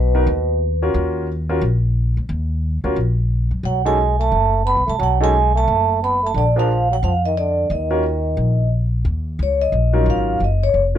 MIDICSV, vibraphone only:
0, 0, Header, 1, 2, 480
1, 0, Start_track
1, 0, Key_signature, -6, "minor"
1, 0, Tempo, 337838
1, 1341, Time_signature, 4, 2, 24, 8
1, 15603, End_track
2, 0, Start_track
2, 0, Title_t, "Vibraphone"
2, 0, Program_c, 0, 11
2, 0, Note_on_c, 0, 71, 77
2, 1104, Note_off_c, 0, 71, 0
2, 5192, Note_on_c, 0, 78, 81
2, 5492, Note_on_c, 0, 80, 98
2, 5494, Note_off_c, 0, 78, 0
2, 5978, Note_off_c, 0, 80, 0
2, 5979, Note_on_c, 0, 81, 93
2, 6632, Note_on_c, 0, 83, 93
2, 6645, Note_off_c, 0, 81, 0
2, 6934, Note_off_c, 0, 83, 0
2, 6956, Note_on_c, 0, 81, 93
2, 7119, Note_off_c, 0, 81, 0
2, 7149, Note_on_c, 0, 78, 86
2, 7432, Note_off_c, 0, 78, 0
2, 7440, Note_on_c, 0, 80, 99
2, 7912, Note_off_c, 0, 80, 0
2, 7920, Note_on_c, 0, 81, 100
2, 8576, Note_off_c, 0, 81, 0
2, 8581, Note_on_c, 0, 83, 87
2, 8868, Note_off_c, 0, 83, 0
2, 8903, Note_on_c, 0, 81, 85
2, 9038, Note_off_c, 0, 81, 0
2, 9063, Note_on_c, 0, 74, 79
2, 9188, Note_off_c, 0, 74, 0
2, 9367, Note_on_c, 0, 77, 94
2, 9791, Note_off_c, 0, 77, 0
2, 9850, Note_on_c, 0, 78, 84
2, 9918, Note_off_c, 0, 78, 0
2, 10000, Note_on_c, 0, 77, 87
2, 10130, Note_off_c, 0, 77, 0
2, 10308, Note_on_c, 0, 75, 80
2, 10460, Note_off_c, 0, 75, 0
2, 10476, Note_on_c, 0, 74, 86
2, 10958, Note_on_c, 0, 75, 66
2, 10961, Note_off_c, 0, 74, 0
2, 12332, Note_off_c, 0, 75, 0
2, 13394, Note_on_c, 0, 73, 73
2, 13661, Note_off_c, 0, 73, 0
2, 13661, Note_on_c, 0, 75, 79
2, 14266, Note_off_c, 0, 75, 0
2, 14349, Note_on_c, 0, 77, 87
2, 14774, Note_off_c, 0, 77, 0
2, 14835, Note_on_c, 0, 75, 64
2, 15103, Note_off_c, 0, 75, 0
2, 15110, Note_on_c, 0, 73, 84
2, 15271, Note_off_c, 0, 73, 0
2, 15603, End_track
0, 0, End_of_file